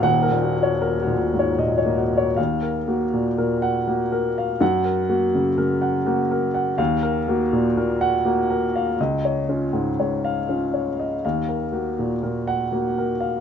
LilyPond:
<<
  \new Staff \with { instrumentName = "Upright piano" } { \time 3/4 \key ees \minor \tempo 4 = 80 << { ges''8 r2 r8 | r4 \tuplet 3/2 { r4 ges''8 } r4 | ges''8 r2 r8 | r4 \tuplet 3/2 { r4 ges''8 } r4 |
r4 \tuplet 3/2 { r4 f''8 } r4 | r4 \tuplet 3/2 { r4 ges''8 } r4 | } \\ { r16 bes'16 ges'16 des''16 bes'16 ges'16 bes,16 des''16 ees''16 des''16 ges'16 des''16 | \tuplet 3/2 { f''8 bes'8 ges'8 bes,8 bes'4 ges'8 bes'8 f''8 } | \tuplet 3/2 { r8 bes'8 ges'8 des8 bes'8 ges''8 ges'8 bes'8 ges''8 } | \tuplet 3/2 { f''8 bes'8 ges'8 bes,8 bes'4 ges'8 bes'8 f''8 } |
\tuplet 3/2 { ees''8 des''8 f'8 aes,8 des''4 f'8 des''8 ees''8 } | \tuplet 3/2 { f''8 bes'8 ges'8 bes,8 bes'4 ges'8 bes'8 f''8 } | } >> }
  \new Staff \with { instrumentName = "Upright piano" } { \clef bass \time 3/4 \key ees \minor \tuplet 3/2 { <ees,, ees,>8 bes,4 r8 bes,8 aes,8 bes,8 bes4 } | \tuplet 3/2 { ees,4 bes8~ bes8 bes,4 } bes8 r8 | \tuplet 3/2 { ges,4 bes8~ bes8 des4 } bes8 r8 | \tuplet 3/2 { ees,4 bes8~ bes8 bes,4 } bes8 r8 |
\tuplet 3/2 { des,4 des'8~ des'8 aes,4 } des'8 r8 | \tuplet 3/2 { ees,4 bes8~ bes8 bes,4 } bes8 r8 | }
>>